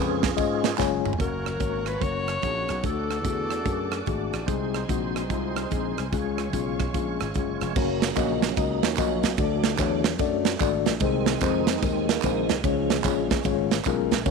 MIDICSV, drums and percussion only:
0, 0, Header, 1, 2, 480
1, 0, Start_track
1, 0, Tempo, 409556
1, 1409, Time_signature, 4, 2, 24, 8
1, 9572, Tempo, 405954
1, 16830, End_track
2, 0, Start_track
2, 0, Title_t, "Drums"
2, 270, Note_on_c, 9, 38, 104
2, 277, Note_on_c, 9, 51, 55
2, 278, Note_on_c, 9, 54, 58
2, 280, Note_on_c, 9, 36, 107
2, 388, Note_off_c, 9, 38, 0
2, 394, Note_off_c, 9, 51, 0
2, 396, Note_off_c, 9, 54, 0
2, 398, Note_off_c, 9, 36, 0
2, 438, Note_on_c, 9, 54, 83
2, 445, Note_on_c, 9, 51, 78
2, 446, Note_on_c, 9, 36, 116
2, 555, Note_off_c, 9, 54, 0
2, 562, Note_off_c, 9, 51, 0
2, 564, Note_off_c, 9, 36, 0
2, 747, Note_on_c, 9, 51, 53
2, 752, Note_on_c, 9, 38, 116
2, 764, Note_on_c, 9, 54, 61
2, 864, Note_off_c, 9, 51, 0
2, 869, Note_off_c, 9, 38, 0
2, 881, Note_off_c, 9, 54, 0
2, 915, Note_on_c, 9, 39, 96
2, 915, Note_on_c, 9, 54, 103
2, 932, Note_on_c, 9, 38, 63
2, 933, Note_on_c, 9, 36, 90
2, 1032, Note_off_c, 9, 39, 0
2, 1032, Note_off_c, 9, 54, 0
2, 1049, Note_off_c, 9, 38, 0
2, 1050, Note_off_c, 9, 36, 0
2, 1233, Note_on_c, 9, 54, 55
2, 1237, Note_on_c, 9, 45, 95
2, 1325, Note_on_c, 9, 43, 104
2, 1350, Note_off_c, 9, 54, 0
2, 1354, Note_off_c, 9, 45, 0
2, 1405, Note_on_c, 9, 36, 94
2, 1408, Note_on_c, 9, 42, 80
2, 1442, Note_off_c, 9, 43, 0
2, 1522, Note_off_c, 9, 36, 0
2, 1525, Note_off_c, 9, 42, 0
2, 1714, Note_on_c, 9, 42, 48
2, 1715, Note_on_c, 9, 37, 86
2, 1831, Note_off_c, 9, 42, 0
2, 1832, Note_off_c, 9, 37, 0
2, 1875, Note_on_c, 9, 42, 88
2, 1881, Note_on_c, 9, 36, 78
2, 1993, Note_off_c, 9, 42, 0
2, 1999, Note_off_c, 9, 36, 0
2, 2180, Note_on_c, 9, 37, 83
2, 2186, Note_on_c, 9, 42, 55
2, 2297, Note_off_c, 9, 37, 0
2, 2303, Note_off_c, 9, 42, 0
2, 2362, Note_on_c, 9, 36, 90
2, 2366, Note_on_c, 9, 42, 68
2, 2479, Note_off_c, 9, 36, 0
2, 2483, Note_off_c, 9, 42, 0
2, 2668, Note_on_c, 9, 42, 51
2, 2673, Note_on_c, 9, 37, 87
2, 2785, Note_off_c, 9, 42, 0
2, 2790, Note_off_c, 9, 37, 0
2, 2840, Note_on_c, 9, 42, 70
2, 2850, Note_on_c, 9, 36, 79
2, 2957, Note_off_c, 9, 42, 0
2, 2968, Note_off_c, 9, 36, 0
2, 3145, Note_on_c, 9, 42, 53
2, 3152, Note_on_c, 9, 37, 84
2, 3262, Note_off_c, 9, 42, 0
2, 3269, Note_off_c, 9, 37, 0
2, 3322, Note_on_c, 9, 42, 78
2, 3326, Note_on_c, 9, 36, 91
2, 3439, Note_off_c, 9, 42, 0
2, 3443, Note_off_c, 9, 36, 0
2, 3639, Note_on_c, 9, 42, 48
2, 3640, Note_on_c, 9, 37, 84
2, 3756, Note_off_c, 9, 42, 0
2, 3757, Note_off_c, 9, 37, 0
2, 3804, Note_on_c, 9, 42, 90
2, 3805, Note_on_c, 9, 36, 80
2, 3921, Note_off_c, 9, 42, 0
2, 3922, Note_off_c, 9, 36, 0
2, 4108, Note_on_c, 9, 37, 86
2, 4114, Note_on_c, 9, 42, 56
2, 4225, Note_off_c, 9, 37, 0
2, 4232, Note_off_c, 9, 42, 0
2, 4286, Note_on_c, 9, 36, 95
2, 4286, Note_on_c, 9, 42, 75
2, 4403, Note_off_c, 9, 36, 0
2, 4403, Note_off_c, 9, 42, 0
2, 4587, Note_on_c, 9, 42, 52
2, 4592, Note_on_c, 9, 37, 99
2, 4704, Note_off_c, 9, 42, 0
2, 4709, Note_off_c, 9, 37, 0
2, 4761, Note_on_c, 9, 42, 70
2, 4774, Note_on_c, 9, 36, 78
2, 4878, Note_off_c, 9, 42, 0
2, 4891, Note_off_c, 9, 36, 0
2, 5077, Note_on_c, 9, 42, 54
2, 5084, Note_on_c, 9, 37, 83
2, 5194, Note_off_c, 9, 42, 0
2, 5201, Note_off_c, 9, 37, 0
2, 5250, Note_on_c, 9, 42, 82
2, 5251, Note_on_c, 9, 36, 98
2, 5367, Note_off_c, 9, 42, 0
2, 5368, Note_off_c, 9, 36, 0
2, 5560, Note_on_c, 9, 42, 48
2, 5561, Note_on_c, 9, 37, 86
2, 5677, Note_off_c, 9, 42, 0
2, 5678, Note_off_c, 9, 37, 0
2, 5734, Note_on_c, 9, 36, 79
2, 5736, Note_on_c, 9, 42, 91
2, 5851, Note_off_c, 9, 36, 0
2, 5853, Note_off_c, 9, 42, 0
2, 6048, Note_on_c, 9, 37, 85
2, 6054, Note_on_c, 9, 42, 57
2, 6165, Note_off_c, 9, 37, 0
2, 6171, Note_off_c, 9, 42, 0
2, 6212, Note_on_c, 9, 36, 89
2, 6212, Note_on_c, 9, 42, 76
2, 6329, Note_off_c, 9, 36, 0
2, 6329, Note_off_c, 9, 42, 0
2, 6517, Note_on_c, 9, 42, 50
2, 6522, Note_on_c, 9, 37, 93
2, 6634, Note_off_c, 9, 42, 0
2, 6639, Note_off_c, 9, 37, 0
2, 6690, Note_on_c, 9, 42, 73
2, 6701, Note_on_c, 9, 36, 75
2, 6808, Note_off_c, 9, 42, 0
2, 6819, Note_off_c, 9, 36, 0
2, 7004, Note_on_c, 9, 42, 58
2, 7011, Note_on_c, 9, 37, 82
2, 7121, Note_off_c, 9, 42, 0
2, 7128, Note_off_c, 9, 37, 0
2, 7180, Note_on_c, 9, 36, 88
2, 7180, Note_on_c, 9, 42, 79
2, 7297, Note_off_c, 9, 36, 0
2, 7298, Note_off_c, 9, 42, 0
2, 7479, Note_on_c, 9, 42, 49
2, 7480, Note_on_c, 9, 37, 85
2, 7596, Note_off_c, 9, 42, 0
2, 7597, Note_off_c, 9, 37, 0
2, 7655, Note_on_c, 9, 42, 90
2, 7657, Note_on_c, 9, 36, 81
2, 7772, Note_off_c, 9, 42, 0
2, 7774, Note_off_c, 9, 36, 0
2, 7964, Note_on_c, 9, 37, 81
2, 7971, Note_on_c, 9, 36, 87
2, 7971, Note_on_c, 9, 42, 59
2, 8082, Note_off_c, 9, 37, 0
2, 8088, Note_off_c, 9, 36, 0
2, 8088, Note_off_c, 9, 42, 0
2, 8138, Note_on_c, 9, 36, 94
2, 8139, Note_on_c, 9, 42, 76
2, 8255, Note_off_c, 9, 36, 0
2, 8256, Note_off_c, 9, 42, 0
2, 8441, Note_on_c, 9, 42, 54
2, 8445, Note_on_c, 9, 37, 91
2, 8558, Note_off_c, 9, 42, 0
2, 8563, Note_off_c, 9, 37, 0
2, 8605, Note_on_c, 9, 42, 68
2, 8621, Note_on_c, 9, 36, 74
2, 8722, Note_off_c, 9, 42, 0
2, 8738, Note_off_c, 9, 36, 0
2, 8918, Note_on_c, 9, 42, 54
2, 8925, Note_on_c, 9, 37, 80
2, 9035, Note_off_c, 9, 42, 0
2, 9042, Note_off_c, 9, 37, 0
2, 9091, Note_on_c, 9, 54, 81
2, 9096, Note_on_c, 9, 36, 115
2, 9098, Note_on_c, 9, 49, 101
2, 9208, Note_off_c, 9, 54, 0
2, 9213, Note_off_c, 9, 36, 0
2, 9215, Note_off_c, 9, 49, 0
2, 9400, Note_on_c, 9, 51, 50
2, 9401, Note_on_c, 9, 38, 101
2, 9404, Note_on_c, 9, 54, 57
2, 9517, Note_off_c, 9, 51, 0
2, 9518, Note_off_c, 9, 38, 0
2, 9521, Note_off_c, 9, 54, 0
2, 9571, Note_on_c, 9, 51, 83
2, 9573, Note_on_c, 9, 36, 102
2, 9574, Note_on_c, 9, 39, 100
2, 9574, Note_on_c, 9, 54, 98
2, 9689, Note_off_c, 9, 51, 0
2, 9691, Note_off_c, 9, 36, 0
2, 9692, Note_off_c, 9, 39, 0
2, 9692, Note_off_c, 9, 54, 0
2, 9876, Note_on_c, 9, 38, 106
2, 9878, Note_on_c, 9, 54, 58
2, 9883, Note_on_c, 9, 51, 55
2, 9995, Note_off_c, 9, 38, 0
2, 9996, Note_off_c, 9, 54, 0
2, 10001, Note_off_c, 9, 51, 0
2, 10041, Note_on_c, 9, 54, 78
2, 10051, Note_on_c, 9, 36, 117
2, 10057, Note_on_c, 9, 51, 78
2, 10159, Note_off_c, 9, 54, 0
2, 10169, Note_off_c, 9, 36, 0
2, 10175, Note_off_c, 9, 51, 0
2, 10354, Note_on_c, 9, 51, 51
2, 10358, Note_on_c, 9, 54, 60
2, 10359, Note_on_c, 9, 38, 116
2, 10472, Note_off_c, 9, 51, 0
2, 10476, Note_off_c, 9, 54, 0
2, 10477, Note_off_c, 9, 38, 0
2, 10518, Note_on_c, 9, 39, 94
2, 10518, Note_on_c, 9, 54, 100
2, 10530, Note_on_c, 9, 51, 72
2, 10537, Note_on_c, 9, 36, 100
2, 10636, Note_off_c, 9, 39, 0
2, 10636, Note_off_c, 9, 54, 0
2, 10648, Note_off_c, 9, 51, 0
2, 10655, Note_off_c, 9, 36, 0
2, 10831, Note_on_c, 9, 51, 57
2, 10837, Note_on_c, 9, 38, 103
2, 10837, Note_on_c, 9, 54, 60
2, 10949, Note_off_c, 9, 51, 0
2, 10955, Note_off_c, 9, 54, 0
2, 10956, Note_off_c, 9, 38, 0
2, 10996, Note_on_c, 9, 54, 79
2, 11008, Note_on_c, 9, 36, 119
2, 11008, Note_on_c, 9, 51, 80
2, 11115, Note_off_c, 9, 54, 0
2, 11126, Note_off_c, 9, 36, 0
2, 11127, Note_off_c, 9, 51, 0
2, 11308, Note_on_c, 9, 51, 49
2, 11309, Note_on_c, 9, 38, 107
2, 11312, Note_on_c, 9, 54, 55
2, 11426, Note_off_c, 9, 51, 0
2, 11427, Note_off_c, 9, 38, 0
2, 11430, Note_off_c, 9, 54, 0
2, 11484, Note_on_c, 9, 39, 109
2, 11484, Note_on_c, 9, 54, 107
2, 11485, Note_on_c, 9, 51, 86
2, 11488, Note_on_c, 9, 36, 95
2, 11602, Note_off_c, 9, 39, 0
2, 11602, Note_off_c, 9, 54, 0
2, 11604, Note_off_c, 9, 51, 0
2, 11606, Note_off_c, 9, 36, 0
2, 11790, Note_on_c, 9, 38, 106
2, 11796, Note_on_c, 9, 51, 60
2, 11798, Note_on_c, 9, 54, 60
2, 11908, Note_off_c, 9, 38, 0
2, 11914, Note_off_c, 9, 51, 0
2, 11917, Note_off_c, 9, 54, 0
2, 11960, Note_on_c, 9, 54, 85
2, 11964, Note_on_c, 9, 51, 78
2, 11969, Note_on_c, 9, 36, 109
2, 12078, Note_off_c, 9, 54, 0
2, 12082, Note_off_c, 9, 51, 0
2, 12087, Note_off_c, 9, 36, 0
2, 12268, Note_on_c, 9, 51, 50
2, 12273, Note_on_c, 9, 38, 123
2, 12288, Note_on_c, 9, 54, 63
2, 12386, Note_off_c, 9, 51, 0
2, 12391, Note_off_c, 9, 38, 0
2, 12406, Note_off_c, 9, 54, 0
2, 12440, Note_on_c, 9, 51, 71
2, 12453, Note_on_c, 9, 39, 100
2, 12453, Note_on_c, 9, 54, 100
2, 12455, Note_on_c, 9, 36, 95
2, 12558, Note_off_c, 9, 51, 0
2, 12571, Note_off_c, 9, 39, 0
2, 12571, Note_off_c, 9, 54, 0
2, 12574, Note_off_c, 9, 36, 0
2, 12753, Note_on_c, 9, 51, 56
2, 12760, Note_on_c, 9, 38, 107
2, 12770, Note_on_c, 9, 54, 60
2, 12872, Note_off_c, 9, 51, 0
2, 12879, Note_off_c, 9, 38, 0
2, 12889, Note_off_c, 9, 54, 0
2, 12921, Note_on_c, 9, 51, 80
2, 12930, Note_on_c, 9, 36, 114
2, 12936, Note_on_c, 9, 54, 80
2, 13039, Note_off_c, 9, 51, 0
2, 13048, Note_off_c, 9, 36, 0
2, 13054, Note_off_c, 9, 54, 0
2, 13232, Note_on_c, 9, 51, 51
2, 13233, Note_on_c, 9, 38, 106
2, 13249, Note_on_c, 9, 54, 55
2, 13350, Note_off_c, 9, 51, 0
2, 13351, Note_off_c, 9, 38, 0
2, 13367, Note_off_c, 9, 54, 0
2, 13401, Note_on_c, 9, 51, 89
2, 13412, Note_on_c, 9, 36, 97
2, 13424, Note_on_c, 9, 39, 112
2, 13424, Note_on_c, 9, 54, 103
2, 13519, Note_off_c, 9, 51, 0
2, 13530, Note_off_c, 9, 36, 0
2, 13542, Note_off_c, 9, 39, 0
2, 13542, Note_off_c, 9, 54, 0
2, 13714, Note_on_c, 9, 38, 105
2, 13720, Note_on_c, 9, 51, 59
2, 13733, Note_on_c, 9, 54, 58
2, 13832, Note_off_c, 9, 38, 0
2, 13838, Note_off_c, 9, 51, 0
2, 13851, Note_off_c, 9, 54, 0
2, 13896, Note_on_c, 9, 54, 81
2, 13898, Note_on_c, 9, 36, 107
2, 13900, Note_on_c, 9, 51, 78
2, 14014, Note_off_c, 9, 54, 0
2, 14016, Note_off_c, 9, 36, 0
2, 14019, Note_off_c, 9, 51, 0
2, 14207, Note_on_c, 9, 51, 51
2, 14209, Note_on_c, 9, 54, 60
2, 14212, Note_on_c, 9, 38, 119
2, 14326, Note_off_c, 9, 51, 0
2, 14328, Note_off_c, 9, 54, 0
2, 14331, Note_off_c, 9, 38, 0
2, 14365, Note_on_c, 9, 39, 99
2, 14365, Note_on_c, 9, 54, 100
2, 14377, Note_on_c, 9, 51, 75
2, 14387, Note_on_c, 9, 36, 97
2, 14484, Note_off_c, 9, 39, 0
2, 14484, Note_off_c, 9, 54, 0
2, 14496, Note_off_c, 9, 51, 0
2, 14505, Note_off_c, 9, 36, 0
2, 14683, Note_on_c, 9, 51, 56
2, 14685, Note_on_c, 9, 54, 56
2, 14690, Note_on_c, 9, 38, 102
2, 14802, Note_off_c, 9, 51, 0
2, 14803, Note_off_c, 9, 54, 0
2, 14809, Note_off_c, 9, 38, 0
2, 14854, Note_on_c, 9, 54, 82
2, 14860, Note_on_c, 9, 36, 114
2, 14867, Note_on_c, 9, 51, 84
2, 14972, Note_off_c, 9, 54, 0
2, 14978, Note_off_c, 9, 36, 0
2, 14985, Note_off_c, 9, 51, 0
2, 15166, Note_on_c, 9, 54, 60
2, 15170, Note_on_c, 9, 51, 50
2, 15171, Note_on_c, 9, 38, 102
2, 15284, Note_off_c, 9, 54, 0
2, 15288, Note_off_c, 9, 51, 0
2, 15289, Note_off_c, 9, 38, 0
2, 15336, Note_on_c, 9, 39, 107
2, 15336, Note_on_c, 9, 54, 102
2, 15341, Note_on_c, 9, 36, 95
2, 15344, Note_on_c, 9, 51, 87
2, 15454, Note_off_c, 9, 39, 0
2, 15454, Note_off_c, 9, 54, 0
2, 15459, Note_off_c, 9, 36, 0
2, 15462, Note_off_c, 9, 51, 0
2, 15645, Note_on_c, 9, 54, 58
2, 15653, Note_on_c, 9, 38, 105
2, 15654, Note_on_c, 9, 36, 110
2, 15659, Note_on_c, 9, 51, 54
2, 15763, Note_off_c, 9, 54, 0
2, 15771, Note_off_c, 9, 38, 0
2, 15772, Note_off_c, 9, 36, 0
2, 15777, Note_off_c, 9, 51, 0
2, 15801, Note_on_c, 9, 54, 80
2, 15819, Note_on_c, 9, 36, 116
2, 15824, Note_on_c, 9, 51, 74
2, 15920, Note_off_c, 9, 54, 0
2, 15938, Note_off_c, 9, 36, 0
2, 15942, Note_off_c, 9, 51, 0
2, 16126, Note_on_c, 9, 51, 50
2, 16128, Note_on_c, 9, 54, 58
2, 16131, Note_on_c, 9, 38, 115
2, 16245, Note_off_c, 9, 51, 0
2, 16246, Note_off_c, 9, 54, 0
2, 16250, Note_off_c, 9, 38, 0
2, 16288, Note_on_c, 9, 39, 99
2, 16288, Note_on_c, 9, 54, 99
2, 16292, Note_on_c, 9, 51, 70
2, 16304, Note_on_c, 9, 36, 96
2, 16406, Note_off_c, 9, 39, 0
2, 16406, Note_off_c, 9, 54, 0
2, 16410, Note_off_c, 9, 51, 0
2, 16422, Note_off_c, 9, 36, 0
2, 16601, Note_on_c, 9, 54, 59
2, 16605, Note_on_c, 9, 51, 56
2, 16612, Note_on_c, 9, 38, 101
2, 16720, Note_off_c, 9, 54, 0
2, 16723, Note_off_c, 9, 51, 0
2, 16730, Note_off_c, 9, 38, 0
2, 16771, Note_on_c, 9, 51, 79
2, 16772, Note_on_c, 9, 54, 81
2, 16777, Note_on_c, 9, 36, 112
2, 16830, Note_off_c, 9, 36, 0
2, 16830, Note_off_c, 9, 51, 0
2, 16830, Note_off_c, 9, 54, 0
2, 16830, End_track
0, 0, End_of_file